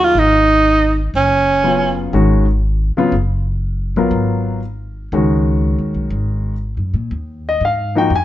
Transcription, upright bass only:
0.00 0.11 D2 medium
0.15 1.10 G#1 medium
1.14 2.09 F#1 medium
2.13 2.93 G#1 medium
2.97 muted upright bass stroke soft
3.12 3.93 F#1 medium
3.96 4.10 B1 medium
4.11 5.07 G#1 medium
5.12 5.75 C#2 medium
5.79 5.94 D#2 medium
5.95 6.10 B1 medium
6.11 6.74 G#1 medium
6.77 6.93 F#2 medium
6.94 7.10 A#2 medium
7.11 7.59 D#2 medium
7.61 8.09 G#2 medium
8.10 8.25 F2 medium

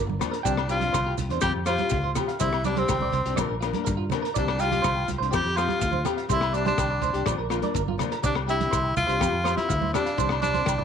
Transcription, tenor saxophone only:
0.44 0.67 D4 medium
0.70 1.15 F4 medium
1.41 1.53 G4 medium
1.66 2.12 F4 medium
2.40 2.63 E4 medium
2.66 2.80 D4 medium
2.78 3.51 C4 medium
4.37 4.62 D4 medium
4.61 5.09 F4 loud
5.34 5.58 G4 medium
5.57 6.05 F4 medium
6.32 6.54 E4 medium
6.55 6.66 D4 medium
6.67 7.35 D4 medium
8.26 8.36 D4 medium
8.50 8.94 E4 medium
8.97 9.53 F4 loud
9.57 9.91 E4 medium
9.94 10.39 D4 medium
10.42 10.84 D4 medium

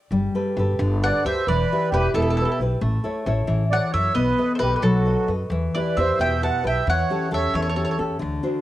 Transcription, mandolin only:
1.04 1.26 F#5 loud
1.26 1.46 E5 medium
1.48 1.90 D5 medium
1.94 2.14 B4 medium
2.15 2.21 A4 medium
2.22 2.29 A4 medium
2.30 2.36 A4 medium
2.37 2.44 A4 medium
2.45 2.51 A4 medium
2.52 2.58 A4 soft
3.73 3.93 F#5 medium
3.94 4.14 E5 medium
4.15 4.52 D#5 loud
4.55 4.75 B4 medium
4.55 4.59 C5 medium
4.76 4.83 B4 medium
4.83 5.31 A4 medium
5.74 5.98 D5 medium
5.97 6.20 E5 medium
6.21 6.43 G5 medium
6.43 6.64 A5 medium
6.67 6.89 G5 medium
6.90 7.31 F#5 loud
7.34 7.54 E5 medium
7.55 7.61 C#5 medium
7.62 7.68 C#5 medium
7.69 7.75 C#5 medium
7.76 7.83 C#5 medium
7.85 7.90 C#5 medium
7.91 7.97 C#5 medium

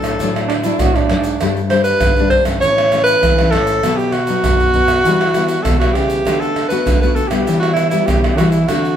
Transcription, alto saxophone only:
0.00 0.50 A4 medium
1.70 1.83 C5 loud
1.84 2.27 B4 loud
2.30 2.44 C5 medium
2.61 3.03 C#5 loud
3.04 3.52 B4 loud
3.51 3.98 A4 loud
3.96 4.14 G4 medium
4.12 5.64 F#4 loud
5.63 5.79 A4 medium
5.79 5.94 F#4 medium
5.93 6.42 G4 medium
6.40 6.68 A4 medium
6.68 6.98 B4 medium
7.01 7.17 B4 medium
7.15 7.29 A4 medium
7.28 7.59 G4 medium
7.60 7.73 F#4 medium
7.73 7.89 E4 medium
7.90 8.07 E4 medium
8.06 8.22 G4 medium
8.36 8.52 F#4 medium
8.51 8.69 E4 medium
8.68 8.96 F#4 loud

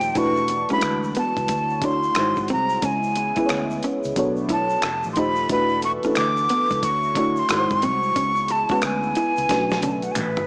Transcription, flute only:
0.00 0.19 G5 medium
0.18 0.71 C#6 loud
0.72 1.14 B5 loud
1.18 1.86 A5 medium
1.85 2.50 C6 loud
2.52 2.87 A#5 medium
2.85 3.84 G#5 medium
4.53 5.08 A5 medium
5.13 5.20 C6 medium
5.19 5.51 B5 medium
5.52 5.82 B5 medium
5.85 5.92 C#6 loud
6.18 6.86 D6 loud
6.84 7.41 C#6 loud
7.39 7.86 C6 loud
7.85 8.53 C#6 loud
8.51 8.84 A5 medium
8.85 9.84 G#5 medium
9.83 9.94 A5 medium
9.92 10.05 G#5 medium
10.03 10.13 F#5 medium
10.12 10.17 G#5 medium
10.19 10.47 B4 medium

